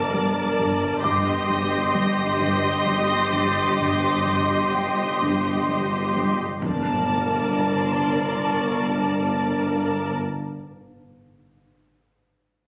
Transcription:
0.00 1.00 G1 medium
0.00 1.01 G1 medium
0.00 1.00 G2 medium
0.00 1.00 A#4 medium
0.00 1.01 D5 medium
0.00 1.46 F#5 soft
0.00 1.00 A5 medium
0.00 0.55 D6 soft
0.14 0.41 G3 medium
0.59 0.86 G2 medium
1.04 6.58 G1 medium
1.04 6.38 G1 soft
1.04 6.38 G2 medium
1.04 1.32 G2 medium
1.04 6.38 G4 medium
1.04 6.43 D#5 medium
1.04 6.38 C6 soft
1.04 3.75 D6 soft
1.04 6.12 D#6 soft
1.04 5.18 G6 soft
1.04 3.43 A#6 soft
1.50 1.77 G2 soft
1.95 2.22 G3 medium
2.40 2.68 G2 medium
2.86 3.14 G3 soft
3.33 3.61 G2 soft
3.43 4.23 A6 soft
3.80 4.09 G2 medium
4.27 4.56 G2 soft
4.75 5.03 G3 soft
4.75 6.59 G5 soft
5.22 5.50 G2 medium
5.69 5.97 G3 soft
6.16 6.44 G2 soft
6.61 10.10 G1 medium
6.61 10.10 G1 soft
6.61 10.10 G2 soft
6.61 10.10 A#4 soft
6.61 10.11 D5 soft
6.61 10.10 A5 soft
6.61 8.85 A5 soft
6.61 impact soft
7.52 8.84 C6 soft
8.42 8.85 C#6 soft

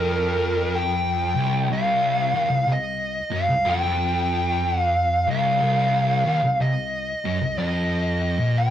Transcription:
0.00 1.35 F2 loud
0.00 0.81 A#4 medium
0.75 1.68 G5 medium
1.35 1.69 C2 loud
1.70 2.33 C2 loud
1.70 2.72 F5 loud
2.34 2.50 D#2 loud
2.50 2.66 C2 medium
2.67 3.19 C2 medium
2.72 3.36 D#5 medium
3.31 3.48 F#2 medium
3.36 3.69 F5 medium
3.49 3.65 C2 medium
3.65 5.26 F2 loud
3.70 4.81 G5 loud
4.81 5.30 F5 loud
5.27 5.61 C2 loud
5.27 6.65 F5 loud
5.62 6.24 C2 loud
6.26 6.42 D#2 loud
6.44 6.60 C2 medium
6.61 7.12 C2 medium
6.61 7.57 D#5 medium
7.25 7.40 F#2 loud
7.41 7.58 C2 medium
7.58 8.38 F2 loud
7.58 8.59 D#5 medium
8.39 8.70 A#2 loud
8.58 8.70 G5 medium

